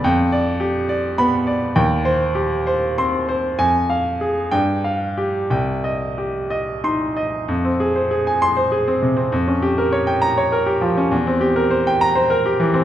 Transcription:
0.04 F2 G5
0.32 D5
0.60 G4
0.89 D5
1.18 B3 B5
1.47 D5
1.76 D#2 G5
2.05 C5
2.35 G4
2.67 C5
2.98 C4 C6
3.29 C5
3.58 F2 G#5
3.90 F5
4.21 G#4
4.51 G2 G5
4.84 F5
5.18 G4
5.50 C2 G5
5.84 D#5
6.18 G4
6.50 D#5
6.84 D#4 C6
7.17 D#5
7.48 F2
7.65 C4
7.80 G#4
7.96 C5
8.11 G#4
8.27 G#5
8.42 C6
8.57 C5
8.72 G#4
8.88 C4
9.02 C3
9.17 C4
9.32 F2
9.48 C#4
9.62 G4
9.78 A#4
9.93 C#5
10.07 G5
10.22 A#5
10.38 C#5
10.52 A#4
10.66 G4
10.81 F3
10.97 C#4
11.11 E2
11.27 C4
11.41 G4
11.56 A#4
11.71 C5
11.87 G5
12.01 A#5
12.15 C5
12.30 A#4
12.46 G4
12.60 E3
12.74 C4

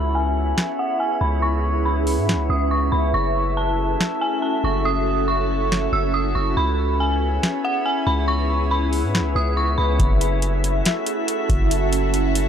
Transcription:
Already playing: C#2 B3 C#4 E4 G#4 B4 C#5 E5 B5
0.15 G#5
0.58 snare
0.79 F#5
1.00 G#5
1.21 C#2 B5
1.42 C#6
1.85 B5
2.07 open hi-hat
2.17 G#2
2.29 snare
2.33 C#2
2.50 C#2 D#6
2.71 C#6
2.92 C#2 B5
3.14 F#1 A3 C#4 F#4 A4 E5 C#6
3.57 A5
4.01 snare
4.21 G#5
4.42 A5
4.64 F#1 C#6
4.85 D#6
5.28 C#6
5.72 snare
5.92 F#1 E6
6.14 D#6
6.35 F#1 C#6
6.57 C#2 B3 E4 G#4 B4 C#5 E5 B5
7.00 G#5
7.43 snare
7.65 F#5
7.86 G#5
8.07 C#2 B5
8.28 C#6
8.71 B5
8.93 open hi-hat
9.03 G#2
9.15 snare
9.19 C#2
9.35 C#2 D#6
9.57 C#6
9.78 C#2 B5
10.00 F#1 A3 C#4 E4 F#4 A4 E5, kick, closed hi-hat
10.21 closed hi-hat
10.42 closed hi-hat
10.64 closed hi-hat
10.85 snare, closed hi-hat
11.06 closed hi-hat
11.28 closed hi-hat
11.50 F#1, kick, closed hi-hat
11.71 closed hi-hat
11.93 closed hi-hat
12.14 closed hi-hat
12.35 closed hi-hat

